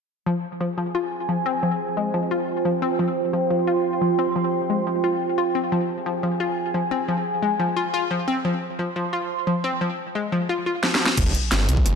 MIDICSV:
0, 0, Header, 1, 6, 480
1, 0, Start_track
1, 0, Key_signature, -4, "minor"
1, 0, Tempo, 340909
1, 373, Time_signature, 4, 2, 24, 8
1, 16830, End_track
2, 0, Start_track
2, 0, Title_t, "Analog synth pad"
2, 0, Program_c, 0, 89
2, 373, Note_on_c, 0, 65, 84
2, 373, Note_on_c, 0, 72, 76
2, 373, Note_on_c, 0, 79, 75
2, 374, Note_on_c, 0, 80, 92
2, 4199, Note_off_c, 0, 80, 0
2, 4212, Note_on_c, 0, 84, 89
2, 8038, Note_off_c, 0, 84, 0
2, 8055, Note_on_c, 0, 80, 90
2, 11880, Note_off_c, 0, 80, 0
2, 11894, Note_on_c, 0, 84, 93
2, 14717, Note_off_c, 0, 65, 0
2, 14717, Note_off_c, 0, 72, 0
2, 14717, Note_off_c, 0, 79, 0
2, 14769, Note_off_c, 0, 84, 0
2, 15735, Note_on_c, 0, 65, 85
2, 15735, Note_on_c, 0, 72, 75
2, 15735, Note_on_c, 0, 79, 77
2, 15735, Note_on_c, 0, 80, 96
2, 16830, Note_off_c, 0, 65, 0
2, 16830, Note_off_c, 0, 72, 0
2, 16830, Note_off_c, 0, 79, 0
2, 16830, Note_off_c, 0, 80, 0
2, 16830, End_track
3, 0, Start_track
3, 0, Title_t, "Synth arpeggio sound"
3, 0, Program_c, 1, 84
3, 373, Note_on_c, 1, 53, 82
3, 477, Note_off_c, 1, 53, 0
3, 853, Note_on_c, 1, 53, 71
3, 957, Note_off_c, 1, 53, 0
3, 1092, Note_on_c, 1, 53, 72
3, 1196, Note_off_c, 1, 53, 0
3, 1333, Note_on_c, 1, 65, 83
3, 1396, Note_off_c, 1, 65, 0
3, 1813, Note_on_c, 1, 53, 75
3, 1917, Note_off_c, 1, 53, 0
3, 2053, Note_on_c, 1, 60, 97
3, 2157, Note_off_c, 1, 60, 0
3, 2293, Note_on_c, 1, 53, 80
3, 2397, Note_off_c, 1, 53, 0
3, 2773, Note_on_c, 1, 56, 75
3, 2929, Note_off_c, 1, 56, 0
3, 3013, Note_on_c, 1, 53, 77
3, 3117, Note_off_c, 1, 53, 0
3, 3254, Note_on_c, 1, 65, 80
3, 3316, Note_off_c, 1, 65, 0
3, 3733, Note_on_c, 1, 53, 77
3, 3837, Note_off_c, 1, 53, 0
3, 3973, Note_on_c, 1, 60, 96
3, 4077, Note_off_c, 1, 60, 0
3, 4213, Note_on_c, 1, 53, 82
3, 4317, Note_off_c, 1, 53, 0
3, 4693, Note_on_c, 1, 53, 72
3, 4797, Note_off_c, 1, 53, 0
3, 4934, Note_on_c, 1, 53, 78
3, 5038, Note_off_c, 1, 53, 0
3, 5174, Note_on_c, 1, 65, 82
3, 5236, Note_off_c, 1, 65, 0
3, 5653, Note_on_c, 1, 53, 77
3, 5757, Note_off_c, 1, 53, 0
3, 5894, Note_on_c, 1, 60, 101
3, 5998, Note_off_c, 1, 60, 0
3, 6134, Note_on_c, 1, 53, 83
3, 6237, Note_off_c, 1, 53, 0
3, 6614, Note_on_c, 1, 56, 73
3, 6769, Note_off_c, 1, 56, 0
3, 6854, Note_on_c, 1, 53, 75
3, 6957, Note_off_c, 1, 53, 0
3, 7093, Note_on_c, 1, 65, 83
3, 7155, Note_off_c, 1, 65, 0
3, 7573, Note_on_c, 1, 65, 74
3, 7636, Note_off_c, 1, 65, 0
3, 7814, Note_on_c, 1, 60, 76
3, 7876, Note_off_c, 1, 60, 0
3, 8054, Note_on_c, 1, 53, 82
3, 8158, Note_off_c, 1, 53, 0
3, 8535, Note_on_c, 1, 53, 74
3, 8638, Note_off_c, 1, 53, 0
3, 8775, Note_on_c, 1, 53, 74
3, 8878, Note_off_c, 1, 53, 0
3, 9013, Note_on_c, 1, 65, 82
3, 9076, Note_off_c, 1, 65, 0
3, 9494, Note_on_c, 1, 53, 78
3, 9597, Note_off_c, 1, 53, 0
3, 9733, Note_on_c, 1, 60, 101
3, 9837, Note_off_c, 1, 60, 0
3, 9974, Note_on_c, 1, 53, 83
3, 10077, Note_off_c, 1, 53, 0
3, 10454, Note_on_c, 1, 56, 73
3, 10609, Note_off_c, 1, 56, 0
3, 10694, Note_on_c, 1, 53, 74
3, 10797, Note_off_c, 1, 53, 0
3, 10933, Note_on_c, 1, 65, 82
3, 10996, Note_off_c, 1, 65, 0
3, 11174, Note_on_c, 1, 65, 96
3, 11329, Note_off_c, 1, 65, 0
3, 11414, Note_on_c, 1, 53, 78
3, 11517, Note_off_c, 1, 53, 0
3, 11654, Note_on_c, 1, 60, 103
3, 11757, Note_off_c, 1, 60, 0
3, 11894, Note_on_c, 1, 53, 84
3, 11997, Note_off_c, 1, 53, 0
3, 12375, Note_on_c, 1, 53, 72
3, 12478, Note_off_c, 1, 53, 0
3, 12614, Note_on_c, 1, 53, 75
3, 12717, Note_off_c, 1, 53, 0
3, 12854, Note_on_c, 1, 65, 82
3, 12916, Note_off_c, 1, 65, 0
3, 13335, Note_on_c, 1, 53, 78
3, 13438, Note_off_c, 1, 53, 0
3, 13573, Note_on_c, 1, 60, 97
3, 13677, Note_off_c, 1, 60, 0
3, 13814, Note_on_c, 1, 53, 81
3, 13918, Note_off_c, 1, 53, 0
3, 14295, Note_on_c, 1, 56, 74
3, 14449, Note_off_c, 1, 56, 0
3, 14535, Note_on_c, 1, 53, 76
3, 14638, Note_off_c, 1, 53, 0
3, 14775, Note_on_c, 1, 65, 82
3, 14837, Note_off_c, 1, 65, 0
3, 15014, Note_on_c, 1, 65, 72
3, 15076, Note_off_c, 1, 65, 0
3, 15254, Note_on_c, 1, 53, 78
3, 15357, Note_off_c, 1, 53, 0
3, 15495, Note_on_c, 1, 53, 77
3, 15556, Note_off_c, 1, 53, 0
3, 16830, End_track
4, 0, Start_track
4, 0, Title_t, "Detuned saw bass"
4, 0, Program_c, 2, 39
4, 15735, Note_on_c, 2, 29, 96
4, 15955, Note_off_c, 2, 29, 0
4, 16215, Note_on_c, 2, 31, 97
4, 16435, Note_off_c, 2, 31, 0
4, 16454, Note_on_c, 2, 36, 100
4, 16675, Note_off_c, 2, 36, 0
4, 16694, Note_on_c, 2, 29, 99
4, 16830, Note_off_c, 2, 29, 0
4, 16830, End_track
5, 0, Start_track
5, 0, Title_t, "Sub drop"
5, 0, Program_c, 3, 103
5, 15735, Note_on_c, 3, 60, 81
5, 16830, Note_off_c, 3, 60, 0
5, 16830, End_track
6, 0, Start_track
6, 0, Title_t, "Drums"
6, 15255, Note_on_c, 9, 38, 64
6, 15396, Note_off_c, 9, 38, 0
6, 15415, Note_on_c, 9, 38, 83
6, 15556, Note_off_c, 9, 38, 0
6, 15575, Note_on_c, 9, 38, 96
6, 15716, Note_off_c, 9, 38, 0
6, 15734, Note_on_c, 9, 42, 101
6, 15734, Note_on_c, 9, 49, 105
6, 15735, Note_on_c, 9, 36, 116
6, 15875, Note_off_c, 9, 42, 0
6, 15875, Note_off_c, 9, 49, 0
6, 15876, Note_off_c, 9, 36, 0
6, 15974, Note_on_c, 9, 42, 68
6, 16115, Note_off_c, 9, 42, 0
6, 16215, Note_on_c, 9, 38, 119
6, 16215, Note_on_c, 9, 42, 98
6, 16355, Note_off_c, 9, 38, 0
6, 16355, Note_off_c, 9, 42, 0
6, 16455, Note_on_c, 9, 42, 67
6, 16575, Note_on_c, 9, 36, 105
6, 16596, Note_off_c, 9, 42, 0
6, 16695, Note_on_c, 9, 40, 39
6, 16695, Note_on_c, 9, 42, 101
6, 16715, Note_off_c, 9, 36, 0
6, 16830, Note_off_c, 9, 40, 0
6, 16830, Note_off_c, 9, 42, 0
6, 16830, End_track
0, 0, End_of_file